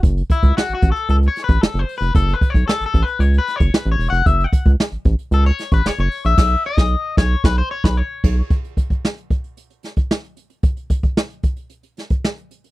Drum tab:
CC |----------------|----------------|----------------|x-------------x-|
HH |xxxx-xxxxxxx-xox|xxxx-xxxxxxx-xox|xxxx-xxxxxxx-xox|----------------|
SD |----o-----o-o---|----o-----o-o---|----o-----o-o---|o--o--o-o--o----|
BD |o-oo--o----o----|o-oo--o----o----|o-oo--o----o----|o--o--o-o--o--o-|

CC |----------------|----------------|
HH |xxxx-xxxxxxx-xxx|xxxx-xxxxxxx-xxx|
SD |----o-----o-o---|----o-----o-o---|
BD |o-oo--o----o----|o-oo--o----o----|